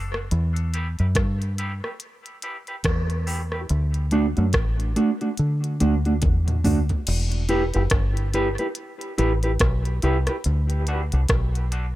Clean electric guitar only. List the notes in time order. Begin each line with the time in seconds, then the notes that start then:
0.14 A3 D4 F#4
0.74 E4 G4 B4
0.99 E4 G4 B4
1.58 E4 G4 B4
1.84 E4 G4 B4
2.43 E4 G4 B4
2.68 E4 G4 B4
3.27 E4 G4 B4
3.53 E4 G4 B4
4.12 A3 D4 F#4
4.37 A3 D4 F#4
4.96 A3 D4 F#4
5.21 A3 D4 F#4
5.80 A3 D4 F#4
6.06 A3 D4 F#4
6.64 A3 D4 F#4
7.49 E4 G4 B4
7.74 E4 G4 B4
8.34 E4 G4 B4
8.59 E4 G4 B4
9.18 E4 G4 B4
9.44 E4 G4 B4
10.03 E4 G4 B4
10.29 E4 G4 B4
10.88 A3 D4 F#4
11.13 A3 D4 F#4
11.72 A3 D4 F#4